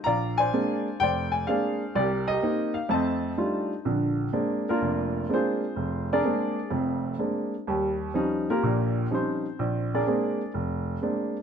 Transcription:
0.04 0.47 A#1 medium
0.04 0.38 D5 medium
0.04 0.96 F5 medium
0.04 0.38 A#5 medium
0.38 1.01 C5 medium
0.38 1.01 D5 medium
0.38 0.96 G#5 medium
0.53 0.87 G#3 medium
0.53 0.87 A#3 soft
0.53 0.87 C4 soft
0.53 0.87 D4 medium
1.00 1.42 F1 medium
1.00 1.93 C5 medium
1.00 1.48 D5 medium
1.00 1.33 G5 medium
1.32 1.47 G#5 medium
1.47 1.82 G#3 soft
1.47 1.82 A#3 soft
1.47 1.82 C4 soft
1.47 1.82 D4 medium
1.47 1.93 G#4 medium
1.47 1.93 D5 medium
1.47 1.96 F5 medium
1.95 2.37 C2 medium
1.95 2.30 G4 medium
1.95 2.29 A#4 medium
1.95 2.26 D5 medium
2.28 2.88 G4 soft
2.28 2.88 A#4 soft
2.28 2.72 D#5 medium
2.42 2.77 A#3 medium
2.42 2.77 C4 soft
2.42 2.77 D#4 medium
2.74 2.89 F5 medium
2.89 3.31 F2 medium
2.89 3.31 A3 medium
2.89 3.67 A5 medium
2.94 3.84 C5 medium
2.94 3.83 D#5 medium
3.37 3.72 G3 soft
3.37 3.72 A3 soft
3.37 3.72 D4 soft
3.37 3.72 D#4 soft
3.37 3.72 F4 medium
3.85 4.27 A#1 medium
3.85 4.27 D3 medium
4.33 4.67 G#3 medium
4.33 4.67 A#3 soft
4.33 4.67 C4 soft
4.33 4.67 D4 medium
4.69 5.27 A#3 medium
4.69 5.27 D4 medium
4.69 5.27 F4 medium
4.69 5.26 A#4 medium
4.81 5.23 F1 medium
5.29 5.63 G#3 soft
5.29 5.63 A#3 soft
5.29 5.32 C4 soft
5.29 5.64 D4 soft
5.34 6.08 C4 soft
5.34 6.08 F4 soft
5.34 6.08 G#4 soft
5.34 6.08 C5 medium
5.76 6.18 F1 medium
6.13 6.23 D4 medium
6.13 6.70 G#4 medium
6.13 6.70 A#4 medium
6.13 6.70 D5 medium
6.23 6.58 G#3 medium
6.23 6.58 A#3 medium
6.23 6.59 C4 soft
6.23 6.59 D4 medium
6.71 7.13 F1 medium
6.71 7.13 F2 medium
7.19 7.53 G#3 soft
7.19 7.53 A#3 soft
7.19 7.54 C4 soft
7.19 7.53 D4 soft
7.67 8.09 D#2 medium
7.67 8.09 G3 medium
8.14 8.49 F3 medium
8.14 8.49 G3 soft
8.14 8.49 C#4 soft
8.14 8.49 D#4 medium
8.50 9.08 A#3 medium
8.50 9.08 F4 soft
8.50 9.08 G4 medium
8.50 9.08 A#4 medium
8.63 9.04 A#1 medium
8.63 9.05 A#2 medium
9.11 9.45 F3 soft
9.11 9.45 G3 soft
9.11 9.45 C#4 soft
9.11 9.45 D#4 soft
9.11 9.89 C5 medium
9.15 9.89 C4 soft
9.59 10.00 A#1 medium
9.94 10.06 D4 medium
9.94 10.51 G#4 medium
9.94 10.51 A#4 soft
9.94 10.51 D5 medium
10.07 10.40 G#3 medium
10.07 10.41 A#3 soft
10.07 10.41 C4 soft
10.07 10.41 D4 medium
10.54 10.95 F1 medium
11.02 11.35 G#3 soft
11.02 11.36 A#3 soft
11.02 11.36 C4 soft
11.02 11.36 D4 soft

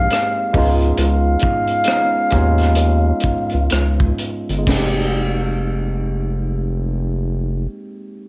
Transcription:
0.00 0.53 G#3 medium
0.00 0.56 A#3 medium
0.00 0.55 C4 medium
0.00 0.56 D#4 medium
0.00 0.55 G4 medium
0.00 0.48 A#4 medium
0.00 0.74 F5 loud
0.11 cross-stick medium
0.11 closed hi-hat medium
0.53 0.92 C#2 medium
0.53 1.80 G#3 medium
0.53 1.81 B3 medium
0.53 1.82 C#4 medium
0.53 1.82 D#4 medium
0.53 kick medium
0.53 open hi-hat soft
0.58 1.83 F4 medium
0.82 closed hi-hat soft
0.97 1.36 C#2 medium
0.97 3.68 F5 medium
0.97 closed hi-hat medium
1.39 kick medium
1.39 closed hi-hat medium
1.67 closed hi-hat soft
1.84 2.29 G#3 medium
1.84 2.29 B3 medium
1.84 2.30 C#4 medium
1.84 cross-stick loud
1.84 closed hi-hat medium
1.88 2.31 D#4 medium
1.88 2.31 G#4 medium
2.30 3.13 D#2 medium
2.30 4.10 G#3 medium
2.30 4.10 B3 medium
2.30 4.11 C#4 medium
2.30 4.12 D#4 medium
2.30 kick medium
2.30 cross-stick soft
2.30 closed hi-hat medium
2.35 4.12 F4 medium
2.58 cross-stick soft
2.58 closed hi-hat soft
2.75 closed hi-hat medium
3.20 3.35 C#2 soft
3.20 kick medium
3.20 closed hi-hat medium
3.50 closed hi-hat soft
3.54 3.69 C#2 medium
3.70 4.13 C#2 medium
3.70 cross-stick medium
3.70 closed hi-hat medium
4.00 kick medium
4.19 closed hi-hat medium
4.49 4.65 G1 medium
4.49 closed hi-hat soft
4.58 7.58 G#3 medium
4.63 7.63 A#3 medium
4.63 kick medium
4.63 crash medium
4.68 7.67 F1 medium
4.68 7.68 C4 medium
4.68 snare medium
4.73 7.72 D#4 medium
4.77 7.77 G4 medium

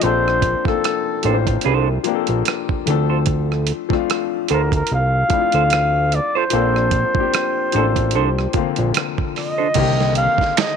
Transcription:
0.00 0.55 A#1 loud
0.00 0.59 F3 medium
0.00 0.60 A#3 medium
0.00 0.60 C4 medium
0.00 0.61 D4 medium
0.00 0.66 C5 medium
0.00 closed hi-hat medium
0.05 0.62 A4 medium
0.28 cross-stick soft
0.42 kick medium
0.42 closed hi-hat medium
0.64 0.73 A1 soft
0.64 1.19 F3 medium
0.64 1.20 A#3 medium
0.64 1.20 C4 medium
0.64 1.21 D4 medium
0.64 1.44 A4 medium
0.64 kick medium
0.64 cross-stick soft
0.69 1.21 A4 medium
0.84 cross-stick medium
0.84 closed hi-hat medium
1.22 1.58 A1 medium
1.22 1.99 F3 medium
1.22 1.99 A#3 medium
1.22 2.00 C4 medium
1.22 1.36 D4 medium
1.22 2.00 D4 medium
1.22 1.36 A4 medium
1.22 1.36 C5 medium
1.22 closed hi-hat medium
1.27 1.33 A#4 medium
1.34 2.04 C5 medium
1.47 kick medium
1.47 closed hi-hat medium
1.61 1.87 D4 medium
1.61 closed hi-hat medium
1.65 1.99 C2 medium
1.65 1.88 A4 medium
1.65 1.88 C5 medium
2.04 2.85 F3 medium
2.04 2.86 A#3 medium
2.04 2.86 C4 medium
2.04 2.87 D4 medium
2.04 closed hi-hat medium
2.08 2.14 G4 medium
2.15 2.89 A4 medium
2.27 2.43 A#1 medium
2.27 closed hi-hat soft
2.45 cross-stick medium
2.45 closed hi-hat medium
2.69 kick medium
2.86 3.72 D2 loud
2.86 2.93 E3 medium
2.86 3.81 A3 medium
2.86 3.81 C4 medium
2.86 3.82 D4 medium
2.86 closed hi-hat medium
2.90 3.84 F3 medium
2.90 3.83 A4 medium
3.10 3.18 F4 soft
3.10 3.18 A4 soft
3.10 3.18 C5 medium
3.26 kick loud
3.26 closed hi-hat medium
3.52 cross-stick soft
3.67 closed hi-hat medium
3.89 3.98 D2 soft
3.89 5.19 F3 medium
3.89 5.19 A3 medium
3.89 5.20 C4 medium
3.89 5.21 D4 medium
3.89 kick medium
3.93 5.21 F4 medium
3.93 cross-stick soft
4.10 cross-stick medium
4.10 closed hi-hat medium
4.48 4.83 D2 medium
4.48 4.60 F4 medium
4.48 4.61 A4 medium
4.48 4.61 C5 medium
4.48 closed hi-hat medium
4.53 4.72 A#4 medium
4.72 4.90 A#4 medium
4.72 kick medium
4.72 closed hi-hat medium
4.87 closed hi-hat medium
4.92 5.24 C2 medium
4.92 6.16 F5 loud
5.29 6.42 F3 medium
5.29 6.43 A3 medium
5.29 6.43 C4 medium
5.29 6.44 D4 medium
5.29 kick medium
5.29 closed hi-hat medium
5.33 5.39 E4 medium
5.40 6.48 F4 medium
5.52 6.20 D2 medium
5.52 5.63 F4 soft
5.52 5.62 A4 medium
5.52 5.62 C5 medium
5.52 closed hi-hat soft
5.70 cross-stick loud
5.70 closed hi-hat medium
6.12 6.39 D5 medium
6.12 closed hi-hat medium
6.35 6.44 F4 medium
6.35 6.44 A4 medium
6.35 6.43 C5 medium
6.35 8.96 C5 medium
6.50 7.04 A#1 loud
6.50 7.08 F3 medium
6.50 7.09 A#3 medium
6.50 7.10 C4 medium
6.50 7.10 D4 medium
6.50 closed hi-hat medium
6.55 7.11 A4 medium
6.76 cross-stick soft
6.91 kick medium
6.91 closed hi-hat medium
7.14 7.22 A1 soft
7.14 7.68 F3 medium
7.14 7.69 A#3 medium
7.14 7.70 C4 medium
7.14 kick medium
7.18 7.70 D4 medium
7.18 7.71 G4 medium
7.34 cross-stick medium
7.34 closed hi-hat medium
7.72 8.16 A1 medium
7.72 8.48 F3 medium
7.72 8.49 A#3 medium
7.72 8.49 C4 medium
7.72 7.85 D4 medium
7.72 8.50 D4 medium
7.72 7.85 A4 soft
7.72 7.85 C5 medium
7.72 closed hi-hat medium
7.78 8.51 A4 medium
7.96 kick medium
7.96 closed hi-hat soft
8.11 8.47 C2 medium
8.11 8.28 D4 medium
8.11 closed hi-hat medium
8.15 8.29 A4 medium
8.15 8.29 C5 medium
8.39 cross-stick soft
8.53 9.68 D3 medium
8.53 9.67 F3 medium
8.53 9.67 A#3 medium
8.53 9.68 C4 medium
8.53 kick medium
8.53 closed hi-hat medium
8.58 9.69 F4 medium
8.76 8.92 A#1 medium
8.76 closed hi-hat soft
8.94 cross-stick loud
8.94 closed hi-hat medium
9.18 kick medium
9.36 10.13 D#5 medium
9.36 cross-stick soft
9.36 open hi-hat soft
9.58 9.67 D4 medium
9.58 9.67 A4 soft
9.58 9.67 C5 medium
9.74 10.28 C2 loud
9.74 10.77 D3 medium
9.74 10.77 D#3 medium
9.74 10.77 A#3 medium
9.74 10.77 C4 medium
9.74 kick loud
9.74 closed hi-hat medium
9.74 crash medium
9.79 10.77 G4 medium
10.01 snare soft
10.15 10.60 F5 medium
10.15 closed hi-hat medium
10.38 10.46 D2 soft
10.38 kick medium
10.38 snare soft
10.57 10.77 D#5 medium
10.57 finger snap medium
10.57 snare loud
10.57 closed hi-hat medium

